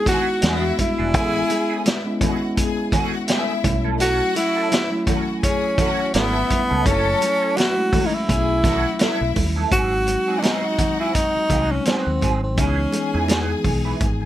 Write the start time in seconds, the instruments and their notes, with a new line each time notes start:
Already playing: tine electric piano G#3 B3 D#4 E4 F#4
0.06 clean electric guitar B3 E4 G#4, string section F#4 F#5, tenor saxophone F#4, kick, snare, closed hi-hat, muted conga, low conga
0.27 muted clean electric guitar stroke
0.41 fingered electric bass E2, tine electric piano G#3 B3 D4 F#4, clean electric guitar B3 D4 G#4, string section E4 E5, snare, closed hi-hat, high conga
0.77 tenor saxophone E4, muted clean electric guitar stroke, kick, closed hi-hat, high conga
0.98 fingered electric bass E1, clean electric guitar B3 D4 G#4, high conga
1.13 fingered electric bass A1, tine electric piano G#3 B3 C#4 E4, clean electric guitar A3 C#4 G#4, string section G#4 G#5, kick, closed hi-hat, muted conga
1.49 muted clean electric guitar stroke, closed hi-hat, muted conga
1.70 clean electric guitar A3 C#4 G#4
1.85 string section E4 E5, muted clean electric guitar stroke, snare, closed hi-hat, high conga
2.05 tine electric piano G#3 B3 C#4 E4
2.20 tine electric piano G#3 B3 C#4 E4, clean electric guitar A3 C#4 G#4, string section F#4 F#5, kick, closed hi-hat, low conga
2.41 muted clean electric guitar stroke
2.57 string section G#4 G#5, muted clean electric guitar stroke, kick, closed hi-hat
2.77 muted clean electric guitar stroke
2.92 clean electric guitar A3 C#4 G#4, string section F#4 F#5, kick, closed hi-hat, muted conga, low conga
3.13 muted clean electric guitar stroke
3.28 clean electric guitar A3 C#4 G#4, string section E4 E5, snare, closed hi-hat, high conga
3.63 fingered electric bass B1, tine electric piano F#3 A3 C#4 E4, muted clean electric guitar stroke, kick, closed hi-hat, high conga
3.85 clean electric guitar C#4 E4 A4, high conga
3.99 clean electric guitar C#4 E4 A4, string section F#4 F#5, tenor saxophone F#4, closed hi-hat, muted conga
4.35 tenor saxophone E4, muted clean electric guitar stroke, closed hi-hat, muted conga
4.56 clean electric guitar C#4 E4 A4
4.71 string section E4 E5, muted clean electric guitar stroke, snare, closed hi-hat, high conga
4.91 tine electric piano F#3 A3 C#4 E4
5.06 tine electric piano F#3 A3 C#4 E4, clean electric guitar C#4 E4 A4, string section F#4 F#5, kick, closed hi-hat, low conga
5.28 muted clean electric guitar stroke
5.43 tenor saxophone C#4, string section G#4 G#5, kick, closed hi-hat
5.63 muted clean electric guitar stroke
5.78 clean electric guitar C#4 E4 A4, string section F#4 F#5, kick, closed hi-hat, muted conga, low conga
5.99 muted clean electric guitar stroke
6.13 fingered electric bass G#1, tenor saxophone B3, clean electric guitar C#4 E4 A4, string section E4 E5, snare, closed hi-hat, high conga
6.49 muted clean electric guitar stroke, kick, closed hi-hat, high conga
6.70 fingered electric bass C#2, clean electric guitar C#4 E4 A4, high conga
6.85 fingered electric bass F#1, tine electric piano F#3 A3 C#4 D#4, clean electric guitar C#4 E4 A4, tenor saxophone C#4, string section A4 A5, kick, closed hi-hat, muted conga
6.93 tine electric piano E4
7.21 muted clean electric guitar stroke, closed hi-hat, muted conga
7.42 clean electric guitar C#4 E4 A4
7.57 string section E4 E5, tenor saxophone F#4, muted clean electric guitar stroke, snare, closed hi-hat, high conga
7.77 tine electric piano G#3 A3 C#4 E4
7.92 tine electric piano G#3 A3 C#4 E4, clean electric guitar C#4 E4 A4, string section F#4 F#5, kick, open hi-hat, low conga
8.06 tenor saxophone D#4
8.13 tenor saxophone E4, muted clean electric guitar stroke
8.27 fingered electric bass B1, tine electric piano F#3 A3 C#4 E4, string section G#4 G#5, muted clean electric guitar stroke, kick, closed hi-hat, muted conga
8.49 muted clean electric guitar stroke
8.63 clean electric guitar B3 E4 A4, string section F#4 F#5, kick, snare, closed hi-hat, muted conga, low conga
8.84 muted clean electric guitar stroke
8.99 clean electric guitar B3 E4 A4, string section E4 E5, snare, closed hi-hat, high conga
9.21 fingered electric bass B1
9.35 fingered electric bass D#2, muted clean electric guitar stroke, kick, open hi-hat, high conga
9.56 clean electric guitar B3 E4 A4, high conga
9.71 fingered electric bass G#1, tine electric piano F#3 G#3 C4 D#4, clean electric guitar C4 F#4 G#4, string section F#4 F#5, tenor saxophone F#4, kick, closed hi-hat, muted conga
10.07 muted clean electric guitar stroke, closed hi-hat, muted conga
10.28 tine electric piano F#3 G#3 C4 D#4, clean electric guitar C4 F#4 G#4
10.39 clean electric guitar C4, tenor saxophone D4, high conga
10.43 tenor saxophone D#4, clean electric guitar F#4 G#4, snare, closed hi-hat
10.78 muted clean electric guitar stroke, kick, closed hi-hat, low conga
11.00 clean electric guitar C4 F#4 G#4, tenor saxophone E4
11.14 tenor saxophone D#4, muted clean electric guitar stroke, kick, closed hi-hat, muted conga
11.36 muted clean electric guitar stroke, muted fingered electric bass stroke
11.50 fingered electric bass C2, tine electric piano F#3 G#3 C4 D#4, clean electric guitar C4 F#4 G#4, kick, closed hi-hat, muted conga, low conga
11.71 tenor saxophone C#4, muted clean electric guitar stroke
11.85 tenor saxophone C4, clean electric guitar C4 F#4 G#4, snare, closed hi-hat, high conga
12.07 fingered electric bass D#2, muted clean electric guitar stroke
12.21 fingered electric bass G#1, clean electric guitar C4 F#4 G#4, kick, closed hi-hat, high conga
12.43 tenor saxophone C4, muted clean electric guitar stroke
12.57 fingered electric bass C#2, tine electric piano E3 G#3 B3 D#4, clean electric guitar B3 E4 G#4, tenor saxophone C#4, string section G#4 G#5, kick, closed hi-hat, muted conga
12.92 muted clean electric guitar stroke, closed hi-hat, muted conga
13.13 fingered electric bass E2, tine electric piano E3 G#3 B3 D#4, clean electric guitar B3 E4 G#4
13.28 clean electric guitar B3 E4 G#4, snare, closed hi-hat, high conga
13.64 fingered electric bass B1, muted clean electric guitar stroke, kick, open hi-hat, low conga
13.85 clean electric guitar B3 E4 B4
14.00 fingered electric bass G#1, muted clean electric guitar stroke, kick, closed hi-hat, muted conga
14.21 muted clean electric guitar stroke